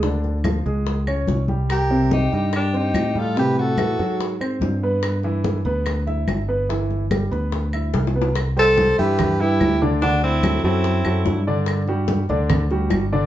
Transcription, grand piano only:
X:1
M:4/4
L:1/8
Q:1/4=144
K:G
V:1 name="Grand piano"
[D,D]2 [=F,=F] [_A,_A]2 [^C^c]2 [G,G]- | [G,G] [C,C]2 [G,G]2 [Cc]2 [G,G] | [C,C]2 [E,E] [F,F]2 [Cc]2 [B,B]- | [B,B] [E,E]2 [B,B]2 [Ee]2 [B,B] |
[E,E]2 [G,G] [B,B]2 [Ee]2 [B,B] | z [G,Gc]2 [E,Ee]2 [G,GB]2 [D,Dd] | [D,Dd]2 [F,FA] [F,FA]2 [F,FA]2 [D,Dd]- | [D,Dd] [G,FG]2 [D,Dd]2 [G,FG]2 [D,Dd] |]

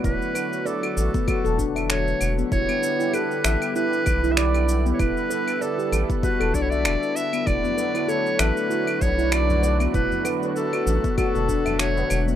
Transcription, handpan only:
X:1
M:4/4
L:1/16
Q:"Swing 16ths" 1/4=97
K:D
V:1 name="Handpan"
E z B z d F z B, F A D e4 B, | E B, B E A z e2 E z2 E d z2 B, | E z B z d G z B, F A D e4 B, | E B, B E A z e2 E z2 E d z d B, |
E z B z2 F z B, F A D e4 B, |]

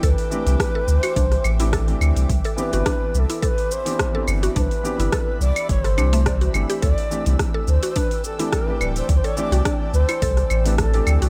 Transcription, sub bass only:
X:1
M:4/4
L:1/16
Q:"Swing 16ths" 1/4=106
K:Clyd
V:1 name="Sub bass" clef=bass
D,, z2 C,, z2 D,, z C,, z A,,,4 D,, C,, | C,, z2 G,,, z2 C,, z6 z G,,, z | C,, z2 G,,, z2 C,, z G,,,2 C,,4 G,,, z | D,, z2 C,, z2 D,, z6 z D,,, z |
D,, z2 C,, z2 D,, z C,, z A,,,4 D,, C,, |]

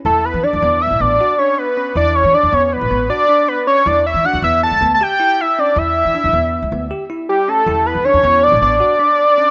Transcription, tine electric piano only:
X:1
M:5/4
L:1/8
Q:1/4=158
K:Edor
V:1 name="Tine electric piano"
E2 D B,2 B, F D2 C | E2 D B,2 B, F D2 C | E2 D B,2 B, G E2 C | E2 D B,2 B, G E2 C |
E2 D B,2 B, F D2 C |]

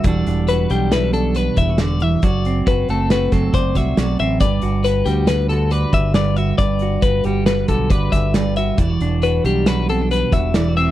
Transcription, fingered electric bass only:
X:1
M:5/4
L:1/8
Q:1/4=137
K:G
V:1 name="Fingered electric bass" clef=bass
E,,, E,,,2 B,,,4 E,,,3 | F,,,2 F,,, F,,,2 F,,, F,,, C,, B,,, A,,, | G,,, G,,,2 D,,4 G,,,3 | G,,,2 G,,, G,,,2 B,,, G,,, G,,,3 |
E,,, E,,,2 B,,,4 E,,,3 |]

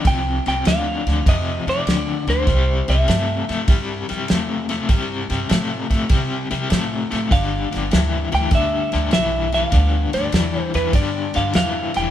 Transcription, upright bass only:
X:1
M:4/4
L:1/8
Q:"Swing" 1/4=99
K:C
V:1 name="Upright bass" clef=bass
C,, C,, D,, D,, F,, F,, D,, D,, | C,, C,, G,, G,, G,, G,, E,,2 | G,, G,, A,, A,, C, C, A,, A,, | G,,, G,,, D,, D,, D,, D,, B,,,2 |
D,, D,, E,, E,, G,, G,, E,, E,,, |]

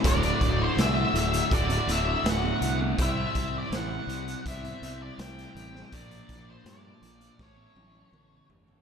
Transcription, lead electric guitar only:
X:1
M:4/4
L:1/16
Q:1/4=82
K:Dmix
V:1 name="Lead electric guitar"
d3 c e2 e2 d2 e2 f3 z | e3 d f4 e3 d g4 | d3 c d4 ^c6 z2 |]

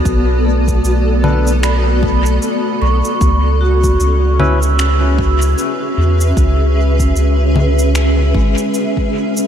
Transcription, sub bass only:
X:1
M:4/4
L:1/8
Q:"Swing 16ths" 1/4=76
K:C#phr
V:1 name="Sub bass" clef=bass
B,,,2 B,,,4 z B,,, | C,,2 C,,4 z E,, | C,,2 C,,3 G,,, z2 |]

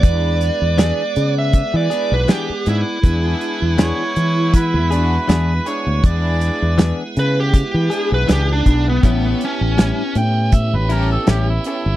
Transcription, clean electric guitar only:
X:1
M:4/4
L:1/8
Q:"Swing 16ths" 1/4=80
K:Emix
V:1 name="Clean electric guitar"
z2 [E,B,DG] z2 [B,DG] [E,B,DG] z | z2 [E,B,DG] z2 [B,DG] [E,B,DG] z | z2 [E,B,DG] z2 [B,DG] [E,B,DG] z | [A,,=G,CE] z [A,,G,CE] z2 [G,CE] [A,,G,CE] z |]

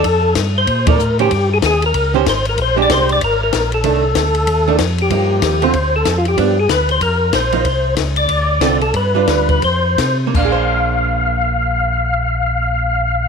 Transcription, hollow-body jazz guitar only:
X:1
M:4/4
L:1/8
Q:"Swing" 1/4=189
K:Bbmix
V:1 name="Hollow-body jazz guitar"
z4 z [F,E=Ad] z [E,_DGc] | z4 z [E,_DGc] z2 | z [A,DG]3 z4 | [E,=A,D] z4 [E,A,D] z2 |
[F,B,E]3 [D,=A,CF] z4 | [F,=B,D] z6 [F,_B,E] | z6 [D,CF=A] z | z [G,DF=B]3 z4 |
[B,DAc]8- | [B,DAc]8 |]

